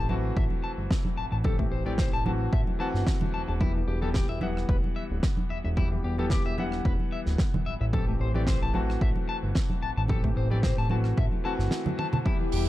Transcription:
Already playing: A1
0.09 E3 A3 C4 F#4 A5, high conga
0.36 A1 E5, kick
0.50 high conga
0.64 A5
0.78 G1
0.91 kick, snare
1.05 high conga
1.17 A1 A5
1.32 A1 A5
1.44 E3 A3 C4 G4 A4, kick, high conga
1.59 A3, kick
1.71 A1 C5
1.85 E3 A3 C4 G4 D5, high conga
1.98 C5, kick, snare
2.13 A1 A5
2.25 E3 A3 C4 F#4 A5, high conga
2.53 A1 E5, kick
2.67 high conga
2.79 E3 A3 C4 F#4 A5
2.94 G1, snare
3.07 kick, snare
3.21 high conga, low conga
3.34 E1 A5
3.48 E1 A5
3.60 E3 G3 B3 E4 G4, kick, high conga
3.76 E3
3.87 E1 G4
4.02 E3 G3 B3 G4 A4, high conga
4.14 G4, kick, snare
4.29 E1 E5
4.41 E3 G3 B3 E5 F#5, high conga
4.57 cross-stick
4.69 E1 B4, kick
4.84 high conga
4.96 E5
5.10 D1
5.23 kick, cross-stick, snare
5.37 high conga
5.50 E1 E5
5.64 E1 E5
5.77 E3 G3 B3 E4 G4, kick, high conga
5.92 E3
6.04 E1 G4
6.18 E3 G3 B3 G4 A4, high conga
6.30 G4, kick, snare
6.45 E1 E5
6.58 E3 G3 B3 E5 F#5, high conga
6.72 cross-stick
6.85 E1 B4, kick
7.00 high conga
7.12 E5
7.26 D1, snare
7.38 kick, cross-stick, snare
7.54 high conga, low conga
7.66 A1 E5
7.81 A1 E5
7.93 E3 A3 C4 G4 A4, kick, high conga
8.08 A3
8.20 A1 C5
8.34 E3 A3 C4 G4 D5, high conga
8.47 C5, kick, snare
8.62 A1 A5
8.73 E3 A3 C4 F#4 A5, high conga
8.90 cross-stick
9.01 A1 E5, kick
9.16 high conga
9.29 A5
9.43 G1
9.55 kick, cross-stick, snare
9.70 high conga
9.82 A1 A5
9.97 A1 A5
10.08 E3 A3 C4 G4 A4, kick, high conga
10.24 A3, kick
10.36 A1 C5
10.50 E3 A3 C4 G4 D5, high conga
10.63 C5, kick, snare
10.78 A1 A5
10.90 E3 A3 C4 F#4 A5, high conga
11.04 cross-stick
11.17 A1 E5, kick
11.32 high conga
11.44 E3 A3 C4 F#4 A5
11.59 G1, snare
11.71 cross-stick, snare
11.86 high conga, low conga
11.99 A5, high tom
12.13 A5, mid tom, low conga
12.25 E3 G3 B3 E4 G4 B4, kick, high conga
12.41 E3
12.52 E1 G4, open hi-hat

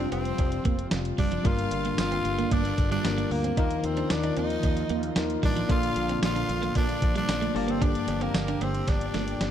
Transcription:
Already playing: C3 F3 G3 C4 F4 G4 C5
0.12 F1 C4 C5, closed hi-hat
0.25 closed hi-hat
0.38 F1, kick, closed hi-hat, cowbell
0.52 closed hi-hat
0.65 F1 A#3, kick, closed hi-hat
0.79 closed hi-hat
0.91 F1, muted clean electric guitar stroke, snare, closed hi-hat, tambourine, cowbell
1.05 closed hi-hat
1.18 F#1 G3 D4 D5, kick, open hi-hat
1.32 F3, closed hi-hat
1.43 G1 G2 D3 G3 A#3 D4 F4 A#4 F5, kick, closed hi-hat, cowbell
1.59 closed hi-hat
1.71 G1, muted clean electric guitar stroke, closed hi-hat
1.85 A#3, closed hi-hat
1.98 G1 F4 F5, snare, closed hi-hat, tambourine, cowbell
2.12 C4, closed hi-hat
2.25 G1, muted clean electric guitar stroke, closed hi-hat
2.38 A#3, closed hi-hat
2.51 G1 A#3 D4 D5, kick, closed hi-hat, cowbell
2.65 muted clean electric guitar stroke, closed hi-hat
2.78 G1, kick, closed hi-hat
2.91 G3 D4 D5, closed hi-hat
3.04 G1 G3 A#3 D4 F4 A#4, snare, closed hi-hat, tambourine, cowbell
3.18 A#3, closed hi-hat
3.31 D2 A#3 A#4, muted clean electric guitar stroke, open hi-hat
3.44 C4, closed hi-hat
3.57 D#2 D#3 F3 A#3 D#4 F4 A#4, kick, closed hi-hat, cowbell
3.71 closed hi-hat
3.84 D#2 C4 C5, muted clean electric guitar stroke, closed hi-hat
3.97 D4, closed hi-hat
4.10 D#2 D4 D5, muted clean electric guitar stroke, snare, closed hi-hat, tambourine, cowbell
4.23 D#4, closed hi-hat
4.37 D#2 C4 D#4 D#5, closed hi-hat
4.50 closed hi-hat
4.63 D#2, kick, closed hi-hat, cowbell
4.77 closed hi-hat
4.89 D#2 A#3, closed hi-hat
5.03 closed hi-hat
5.16 D#2 D#4 F4 A#4, muted clean electric guitar stroke, snare, closed hi-hat, tambourine, cowbell
5.30 closed hi-hat
5.43 A1 G3 D4 D5, kick, open hi-hat
5.56 F3, closed hi-hat
5.68 A#1 A#2 D3 F3 A#3 D4 F4 A4 D5 F5, kick, closed hi-hat, cowbell
5.83 closed hi-hat
5.96 A#1, muted clean electric guitar stroke, closed hi-hat
6.09 C4, closed hi-hat
6.23 A#1 F4 F5, snare, closed hi-hat, tambourine, cowbell
6.36 D4, closed hi-hat
6.49 A#1, muted clean electric guitar stroke, closed hi-hat
6.62 A#3, closed hi-hat
6.75 A#1 A#3 D4 D5, kick, closed hi-hat, cowbell
6.89 muted clean electric guitar stroke, closed hi-hat
7.02 A#1, kick, closed hi-hat
7.15 G3 D4 D5, closed hi-hat
7.29 A#1, snare, closed hi-hat, tambourine, cowbell
7.41 A3, closed hi-hat
7.54 G1 G2 D3 A#3 D4 G4 A#4 D5 A5, muted clean electric guitar stroke, open hi-hat
7.68 A#3 C4 C5, closed hi-hat
7.82 D4 D5, kick, closed hi-hat, cowbell
7.95 closed hi-hat
8.08 G1, muted clean electric guitar stroke, closed hi-hat, cowbell
8.21 A#3 C4 A#4, closed hi-hat
8.34 G1, muted clean electric guitar stroke, snare, closed hi-hat, tambourine, cowbell
8.48 D4, closed hi-hat
8.61 G1 A#3 C4 C5, closed hi-hat, cowbell
8.75 closed hi-hat
8.88 G1 D4 D5, kick, snare, closed hi-hat, cowbell
9.01 closed hi-hat
9.14 G1 A3, snare, closed hi-hat
9.28 closed hi-hat
9.41 G1, muted clean electric guitar stroke, snare, closed hi-hat, cowbell

